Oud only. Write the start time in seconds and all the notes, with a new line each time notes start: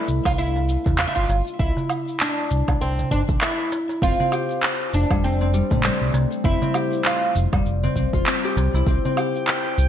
Already playing: E4
0.26 F4
0.38 E4
0.99 F4
1.08 E4
1.15 F4
1.59 E4
2.21 D4
2.81 C4
3.11 D4
3.42 E4
4.03 F4
4.94 D4
5.24 C4
5.85 C4
6.45 E4
7.06 F4